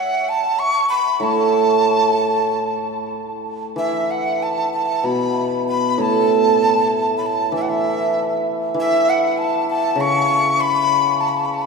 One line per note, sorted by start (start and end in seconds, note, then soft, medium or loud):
0.00 0.30 F#5 medium
0.29 0.61 A5 medium
0.59 0.89 C#6 loud
0.89 1.24 B5 medium
1.20 3.12 A2 medium
1.20 3.13 A5 loud
3.76 5.67 E3 medium
3.76 4.12 E5 medium
4.11 4.44 F#5 medium
4.43 4.73 A5 medium
4.74 5.07 A5 medium
5.04 5.99 B2 medium
5.04 5.67 B5 medium
5.68 6.03 B5 medium
5.98 7.84 A2 medium
5.98 7.17 A5 loud
7.18 7.28 B5 medium
7.26 7.56 A5 medium
7.52 8.73 E3 medium
7.56 7.63 E5 medium
7.62 7.71 F#5 medium
7.69 8.47 E5 medium
8.74 10.59 E3 medium
8.80 9.11 E5 medium
9.09 9.39 F#5 medium
9.37 9.68 A5 medium
9.70 10.02 A5 medium
9.96 11.66 C#3 medium
10.01 10.62 C#6 loud
10.61 11.22 B5 loud
11.21 11.30 A5 medium
11.28 11.38 B5 medium
11.37 11.47 A5 medium
11.45 11.56 B5 medium
11.54 11.63 A5 medium
11.62 11.66 B5 medium